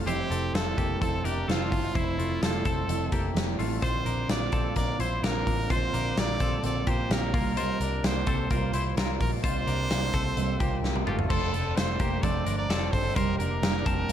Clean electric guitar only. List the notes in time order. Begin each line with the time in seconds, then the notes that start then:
0.07 E4 C5
0.31 C4 A4
0.78 A#3 G4
1.01 C4 A4
1.24 D4 A#4
1.48 C4 A4
1.95 E4 C5
2.19 A3 F4
2.66 C4 A4
3.12 A#3 G4
3.59 A3 F4
3.82 F4 C5
4.06 D4 A#4
4.53 C4 A4
4.76 D4 A#4
5.00 E4 C5
5.23 D4 A#4
5.70 F4 C5
5.94 D4 A#4
6.40 C4 A4
6.87 A#3 G4
7.34 A#3 F4
7.57 F4 C5
7.81 D4 A#4
8.27 C4 A4
8.51 F4 A#4
8.74 E4 C5
8.97 F4 A#4
9.44 F4 C5
9.67 D4 A#4
10.14 C4 A4
10.60 A#3 G4
11.07 A3 F4
11.30 F4 C5
11.53 C4 A4
12.00 A#3 G4
12.23 C4 A4
12.46 D4 A#4
12.70 C4 A4
13.16 G4 C5
13.40 D4 A#4
13.86 C4 A5